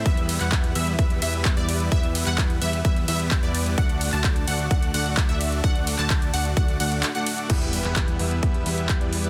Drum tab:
CC |----------------|----------------|----------------|----------------|
RD |--x---x---x---x-|--x---x---x---x-|--x---x---x---x-|--x---x---x---x-|
HH |xxoxxxoxxxoxxxox|xxoxxxoxxxoxxxox|xxoxxxoxxxoxxxox|xxoxxxoxxxoxxxox|
CP |---xx-------x---|---xx-------x---|---xx-------x---|---xx-------x---|
BD |o---o---o---o---|o---o---o---o---|o---o---o---o---|o---o---o-------|

CC |x---------------|
RD |----------------|
HH |xxoxxxoxxxoxxxox|
CP |---xx-------x---|
BD |o---o---o---o---|